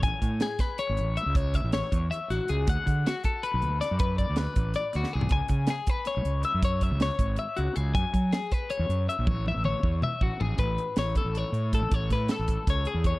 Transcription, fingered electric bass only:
0.03 A1
0.22 A2
0.89 G#1
0.99 A1
1.26 C#2
1.64 A1
1.92 E2
2.30 A1
2.50 C#2
2.68 D2
2.86 D3
3.54 B1
3.62 D2
3.91 F#2
4.29 D2
4.56 A1
4.95 D2
5.15 C2
5.31 C#2
5.49 C#3
6.17 B1
6.25 C#2
6.54 F#2
6.91 C#2
7.19 G#1
7.58 C#2
7.77 C#2
7.94 F#2
8.14 F#3
8.79 E2
8.89 F#2
9.19 A#1
9.27 A1
9.56 A1
9.83 E2
10.21 A1
10.41 A1
10.59 A1
10.97 A1
11.24 A1
11.52 A2
11.81 A1
11.91 A1
12.10 A2
12.39 A1
12.67 C#2
12.94 E2

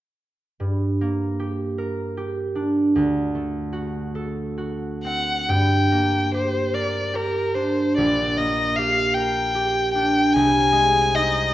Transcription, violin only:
5.04 F#5
5.50 G5
6.34 C5
6.75 D5
7.16 A#4
7.55 C5
7.97 D5
8.38 D#5
8.76 F5
9.14 G5
9.94 G5
10.33 G#5
11.15 D#5

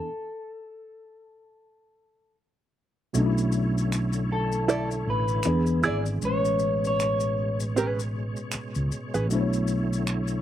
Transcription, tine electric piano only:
3.13 B2 A3 C#4
3.18 D4 D#4
3.26 E4
5.45 E3 B3 D4 G#4
6.21 A2 G#3
6.25 C#4 B4
9.29 B2 A3 D4
9.33 E4 C5
9.41 C#5

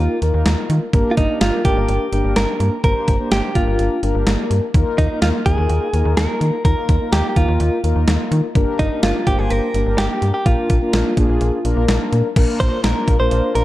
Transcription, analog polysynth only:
Already playing: A#3 D#4 F4 A#4
0.22 A#3 D#4 F4 A#4
0.93 A#3 D4 G4 A#4
1.29 A#3 D4 G4 A#4
1.65 A#3 D4 G4 A#4
2.12 A#3 D4 G4 A#4
2.84 A#3 D4 G4 C5
3.20 A#3 D4 G4 C5
3.55 A#3 D4 G4 A#4
4.03 A#3 D4 G4 A#4
4.74 A#3 D#4 F4 A#4
5.10 A#3 D#4 F4 A#4
5.46 A#3 D#4 F4 A#4
5.93 A#3 D#4 F4 A#4
6.65 A#3 D#4 F4 A#4
7.01 A#3 D#4 F4 A#4
7.36 A#3 D#4 F4 A#4
7.84 A#3 D#4 F4 A#4
8.55 A#3 D4 G4 A#4
8.91 A#3 D4 G4 A#4
9.27 A#3 D4 G4 C5
9.74 A#3 D4 G4 A#4
10.46 A#3 D4 F4 A#4
10.82 A#3 D4 F4 A#4
11.17 A#3 D4 F4 G#4
11.65 A#3 D4 F4 A#4
12.36 A#3 D4 F4 A#4
12.84 A#3 D4 F4 A#4
13.20 A#3 D4 F4 A#4
13.55 A#3 D4 F4 C5

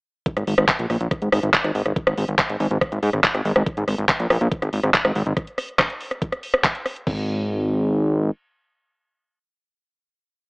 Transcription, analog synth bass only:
0.37 G#1
0.47 G#1
0.58 G#1
0.79 A#1
0.90 A#1
1.01 A#1
1.22 G#1
1.32 G#1
1.43 G#1
1.64 G#1
1.75 G#1
1.86 G#1
2.07 G#1
2.18 G#1
2.28 G#1
2.49 G#1
2.60 G#1
2.71 G#1
2.92 G#1
3.03 G#2
3.13 G#1
3.35 G#1
3.45 G#1
3.56 G#1
3.77 G#1
3.88 G#1
3.98 G#1
4.20 A#1
4.30 A#1
4.41 A#1
4.62 G#1
4.73 G#1
4.83 G#1
5.05 G#1
5.15 G#1
5.26 G#1
7.07 G#1

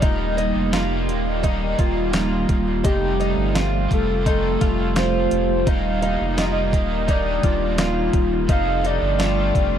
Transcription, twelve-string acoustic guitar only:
0.02 D#4
0.37 D#4
0.73 F4
1.43 D#4
1.78 F4
2.14 F4
2.84 D#4
3.20 D#4
3.55 F4
4.26 D#4
4.61 F4
4.96 F4
5.67 D#4
6.02 D#4
6.37 F4
7.08 D#4
7.43 F4
7.78 F4
8.49 D#4
8.84 D#4
9.19 F4

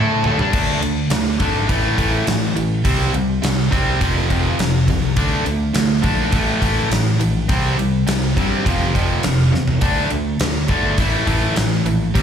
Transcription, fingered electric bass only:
Already playing: A2
0.23 D2
0.37 G2
0.54 D2
0.81 D2
1.10 D2
1.40 G#1
1.69 A1
1.98 A1
2.27 A1
2.56 A1
2.85 C2
3.14 C2
3.43 C2
3.72 C2
4.01 F1
4.60 F1
4.88 C2
5.17 D2
5.47 D2
5.75 D2
6.04 A#1
6.33 A1
6.62 A1
6.91 A1
7.20 A#1
7.50 C2
7.79 C2
8.07 C2
8.37 G2
8.66 F1
9.24 F1
9.54 E2
9.82 D2
10.12 D2
10.40 D2
10.69 G1
10.98 A1
11.27 A1
11.57 A1
11.86 A#1
12.16 C2

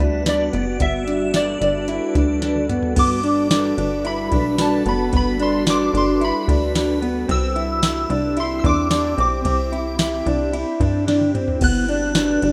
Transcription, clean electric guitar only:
0.00 D4
0.26 D4
0.53 B3
0.80 B3
1.07 D4
1.35 D4
1.61 D4
1.89 E4
2.16 D4
2.42 D4
2.69 B3
2.96 B3
3.24 D4
3.51 D4
3.78 D4
4.05 E4
4.32 D4
4.59 D4
4.86 B3
5.13 B3
5.40 D4
5.67 D4
5.94 D4
6.21 E4
6.48 D4
6.75 D4
7.02 B3
7.28 C4
7.56 E4
7.83 E4
8.10 D4
8.37 E4
8.64 D4
8.91 D4
9.17 C4
9.44 C4
9.72 E4
9.99 E4
10.26 D4
10.53 E4
10.80 D4
11.07 D4
11.35 C4
11.62 B3
11.89 D4
12.15 D4
12.43 D4

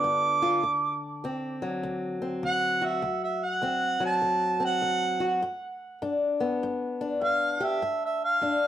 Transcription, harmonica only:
Already playing: D6
2.46 F#5
2.86 E5
3.24 E5
3.45 F#5
4.06 A5
4.65 F#5
7.23 F5
7.64 E5
8.05 E5
8.25 F5

